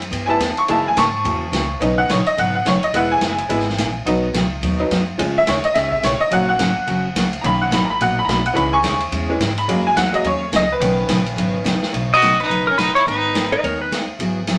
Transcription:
Already playing: F#2
0.02 ride
0.10 G2 E3 B3 E4 G4, ride
0.26 G3 B3 E4 G#5 A5
0.39 E2 E3 B3 E4 G4, snare, hi-hat pedal, ride
0.57 C#6, ride
0.68 F#2 C#3 E3 G#3 A#3 C#4 E4 F#4 A5, ride
0.88 G#5
0.96 G#2 C#3 E3 A#3 C#4 F#4 A5 C#6, snare, hi-hat pedal, ride
1.24 E2 C#3 E3 A#3 C#4 F#4, ride
1.52 C#2 C#3 E3 A#3 C#4 F#4, snare, hi-hat pedal, ride
1.80 B1 B2 C#3 F#3 B3 C#4 D#4 B4, ride
1.98 F#5
2.08 A#1 B2 C#3 F#3 B3 D#4 B4 C#5, snare, hi-hat pedal, ride
2.26 D#5, muted upright bass stroke, ride
2.37 G#1 B2 C#3 F#3 B3 D#4 B4 F#5, ride
2.55 F#5
2.65 F#1 B2 C#3 F#3 B3 D#4 B4 C#5, snare, hi-hat pedal, ride
2.83 D#5, ride
2.93 E1 E3 G#3 B3 E4 G#4 F#5, ride
3.12 G#5
3.21 F#1 E3 G#3 B3 E4 G#4, snare, hi-hat pedal, ride
3.38 ride
3.49 G#1 E3 G#3 B3 E4 G#4, ride
3.59 snare
3.69 snare
3.77 A#1 E3 G#3 B3 E4 G#4, snare, hi-hat pedal, ride
4.05 B1 B2 F#3 B3 D#4 F#4, ride
4.34 C#2 B2 F#3 B3 D#4 F#4, snare, hi-hat pedal, ride
4.62 D#2 B2 F#3 B3 D#4 F#4, ride
4.79 F#3 B3 D#4
4.90 F#2 B2 F#3 B3 D#4 F#4, snare, hi-hat pedal, ride
5.18 F2 C#3 F3 G#3 C#4 F4 G#4, ride
5.38 E5
5.46 D#2 C#3 G#3 C#4 F4 G#4 C#5, snare, hi-hat pedal, ride
5.64 D#5, ride
5.74 C#2 C#3 G#3 C#4 F4 G#4 E5, snare, ride
5.92 E5, kick
6.02 B1 C#3 G#3 C#4 F4 G#4 C#5, snare, hi-hat pedal, ride
6.20 D#5, muted upright bass stroke
6.30 A#1 C#3 F#3 A#3 C#4 F#4 F#5, ride
6.49 F#5
6.59 G#1 C#3 F#3 A#3 C#4 F#4, snare, hi-hat pedal, ride
6.76 muted upright bass stroke
6.87 F#1 C#3 F#3 A#3 C#4 F#4, ride
7.15 C#2 C#3 F#3 A#3 C#4 F#4, snare, hi-hat pedal, ride
7.33 ride
7.41 B1 B2 D#3 F#3 A#3 C#4 D#4 F#4 A#5, ride
7.46 B5
7.61 F#5
7.71 G#1 B2 F#3 A#3 D#4 F#4 B5, snare, hi-hat pedal, ride
7.85 A#5
7.90 B5
7.99 A#1 B2 F#3 A#3 D#4 F#4 F#5, ride
8.19 B5
8.25 B1 B2 F#3 A#3 A#5
8.29 D#4 F#4 B5, snare, hi-hat pedal, ride
8.46 F#5, ride
8.53 C#2 C#3 E3 G#3 C#4 E4 G#4 B5, ride
8.73 G#5 C#6
8.83 D#2 C#3 G#3 C#4 E4 G#4, snare, hi-hat pedal, ride
9.00 ride
9.11 E2 C#3 G#3 C#4 E4 G#4, ride
9.29 E3 G#3 C#4
9.39 G#2 C#3 G#3 C#4 E4 G#4, snare, hi-hat pedal, ride
9.58 B5, ride
9.68 F#2 F#3 G#3 A#3 C#4 G#4, ride
9.87 G#5
9.95 E2 F#3 A#3 C#4 G#4 F#5, snare, hi-hat pedal, ride
10.13 F#3 G#3 A#3 D#5, ride
10.24 D#2 F#3 A#3 C#4 G#4 C#5, ride
10.52 C#2 F#3 A#3 C#4 G#4 D#5, snare, hi-hat pedal, ride
10.72 B4
10.80 B1 B2 C#3 D#3 F#3 B3 C#4 D#4 B4, ride
11.08 A#1 B2 C#3 F#3 B3 D#4 B4, snare, hi-hat pedal, ride
11.26 ride
11.36 G#1 B2 C#3 F#3 B3 D#4 B4, ride
11.64 F#1 B2 C#3 F#3 B3 D#4 B4, snare, hi-hat pedal, ride
11.81 muted upright bass stroke, snare
11.92 B1 B2 C#3 F#3 B3 D#4 B4, ride
12.14 F#4 D#5
12.22 B2 C#3 F#3 B3 D#4 B4, snare, hi-hat pedal, ride
12.40 D#4 B4, ride
12.49 F#1 B2 C#3 F#3 B3 D#4 B4, ride
12.67 C#4 A#4
12.77 B2 C#3 F#3 B3 D#4 B4, snare, hi-hat pedal, ride
12.95 E4 C#5, ride
13.06 G#1 D#3 G#3 B3 D#4 A#4 B4, ride
13.34 D#3 G#3 B3 D#4 A#4, snare, hi-hat pedal, ride
13.52 B4 D#5, ride
13.63 D#2 D#3 G#3 B3 D#4 A#4 C#5, ride
13.81 B4
13.91 D#3 G#3 B3 D#4 A#4, snare, hi-hat pedal, ride
14.19 G#1 E3 F#3 B3 F#4 G#4, ride
14.47 E3 F#3 B3 F#4 G#4, snare, hi-hat pedal, ride

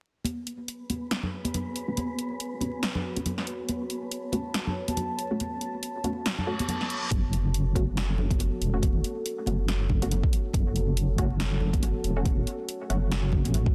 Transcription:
0.24 B3 F#4 B4 C#5 G#5, closed hi-hat, high conga
0.47 closed hi-hat
0.68 closed hi-hat
0.90 A3 C#4 F#4, closed hi-hat, high conga
1.11 snare, closed hi-hat
1.23 low conga
1.45 closed hi-hat, high conga
1.54 closed hi-hat, low conga
1.76 closed hi-hat
1.88 A3 C#4 F#4
1.97 closed hi-hat, high conga
2.19 closed hi-hat
2.40 closed hi-hat
2.61 A3 C#4 F#4, closed hi-hat, high conga
2.83 snare, closed hi-hat
2.95 low conga
3.16 A3 C#4 F#4, closed hi-hat, high conga
3.26 closed hi-hat, low conga
3.38 snare
3.47 closed hi-hat
3.68 A5, closed hi-hat, high conga
3.90 closed hi-hat
4.12 closed hi-hat
4.32 A3 C#4 F#4, closed hi-hat, high conga
4.54 snare, closed hi-hat
4.67 low conga
4.88 closed hi-hat, high conga
4.97 closed hi-hat, low conga
5.19 closed hi-hat
5.31 A3 C#4 F#4
5.40 closed hi-hat, high conga
5.61 closed hi-hat
5.83 closed hi-hat
6.04 A3 C#4 F#4, closed hi-hat, high conga
6.26 snare, closed hi-hat, reverse cymbal
6.38 low conga
6.47 A3 C#4 F#4
6.59 closed hi-hat, high conga
6.68 closed hi-hat, low conga
6.81 snare
6.90 closed hi-hat
7.11 F#1 F#4 A4 C#5, kick, closed hi-hat, high conga
7.33 closed hi-hat
7.54 closed hi-hat
7.75 F#1 A3 C#4 F#4, kick, closed hi-hat, high conga
7.97 snare, closed hi-hat
8.18 low conga
8.31 kick, closed hi-hat, high conga
8.39 closed hi-hat, low conga
8.61 E1, closed hi-hat
8.74 A3 C#4 F#4
8.82 kick, closed hi-hat, high conga
9.04 closed hi-hat
9.26 closed hi-hat
9.46 F#1 A3 C#4 F#4, closed hi-hat, high conga
9.68 snare, closed hi-hat
9.89 kick, low conga
10.02 A3 C#4 F#4, closed hi-hat, high conga
10.11 closed hi-hat, low conga
10.23 kick
10.33 closed hi-hat
10.53 F#1, kick, closed hi-hat, high conga
10.76 closed hi-hat
10.97 closed hi-hat
11.18 F#1 A3 C#4 F#4, kick, closed hi-hat, high conga
11.40 snare, closed hi-hat
11.61 low conga
11.73 kick, closed hi-hat, high conga
11.83 closed hi-hat, low conga
12.04 E1, closed hi-hat
12.16 A3 C#4 F#4
12.25 kick, closed hi-hat, high conga
12.47 closed hi-hat
12.69 closed hi-hat
12.90 F#1 A3 C#4 F#4, closed hi-hat, high conga
13.12 snare, closed hi-hat
13.32 kick, low conga
13.45 A1, closed hi-hat, high conga
13.54 closed hi-hat, low conga
13.66 kick

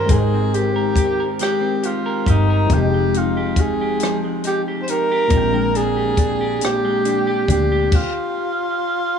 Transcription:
Already playing: D#3 C#4 G4 A#4 C5
0.05 G#3 D#4, kick, closed hi-hat
0.10 G#1 G#3 G#4 A#4 G5
0.16 C5
0.34 C4
0.54 G4, closed hi-hat
0.76 A#4
0.96 G4, kick, closed hi-hat
1.20 A#4
1.39 G#3 G4, cross-stick, closed hi-hat
1.61 C4
1.83 F4 G4, closed hi-hat
2.06 A#4
2.26 G1 D#4 G4, kick, closed hi-hat
2.50 A#4
2.66 F3 C4, kick, closed hi-hat
2.71 F1 F3 D#4 G4 G5
2.76 G#3
2.94 G#3
3.14 D#4 F4, closed hi-hat
3.37 G4
3.56 D#4 G#4, kick, closed hi-hat
3.81 G4
4.00 F3, cross-stick, closed hi-hat
4.24 G#3
4.44 D#4 G4, closed hi-hat
4.68 G4
4.83 C5
4.88 D#4 A#4, closed hi-hat
5.12 G4
5.27 A#2 F3, kick, closed hi-hat
5.32 A#1 A#2 G#3 C4 D4
5.37 G5
5.54 G#3
5.75 D4 G#4, closed hi-hat
5.97 G4
6.17 D4, kick, closed hi-hat
6.41 G4
6.61 A#2 G4, cross-stick, closed hi-hat
6.85 G#3
7.05 D4, closed hi-hat
7.27 G4
7.48 D2 D4 G4, kick, closed hi-hat
7.72 G4
7.92 F4, kick, crash

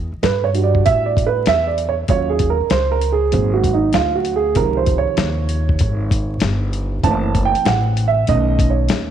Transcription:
0.12 muted upright bass stroke
0.23 G2 B4, snare, closed hi-hat
0.44 C#5
0.54 G3 D4 F#4, closed hi-hat
0.64 D5
0.75 kick
0.86 A2 E5, kick, closed hi-hat
1.06 D5
1.17 kick, closed hi-hat
1.26 B4
1.46 E2 E5, snare, closed hi-hat
1.67 D5
1.78 closed hi-hat
1.89 C#5
2.08 D#2 F#3 C#4 F4 C#5, kick, closed hi-hat
2.29 G#4
2.39 kick, closed hi-hat
2.50 A#4
2.60 muted upright bass stroke
2.70 C#2 C5, snare, closed hi-hat
2.92 A#4
3.01 closed hi-hat
3.12 G#4
3.32 G#1 F#3 A#3 C4, kick, closed hi-hat
3.54 F#4
3.64 kick, closed hi-hat
3.74 D#4
3.93 D2 F4, snare, closed hi-hat
4.15 F#4
4.25 closed hi-hat
4.36 G#4
4.55 C#2 C3 D#3 F3 A#4, kick, closed hi-hat
4.77 C5
4.86 kick, closed hi-hat
4.98 C#5
5.07 muted upright bass stroke
5.17 D#2, snare, closed hi-hat
5.49 closed hi-hat
5.69 kick
5.79 G#1, kick, closed hi-hat
6.11 kick, closed hi-hat
6.40 G1, snare, closed hi-hat
6.73 closed hi-hat
7.03 F#1 E3 A3 C4 A5, kick, closed hi-hat
7.35 kick, closed hi-hat
7.45 G5
7.55 muted upright bass stroke, closed hi-hat
7.65 A1 F#5, snare, closed hi-hat
7.97 closed hi-hat
8.08 E5
8.27 B1 D#3 A3 C#4 D#5, kick, closed hi-hat
8.59 kick, closed hi-hat
8.70 C#5
8.88 D#2, snare, closed hi-hat

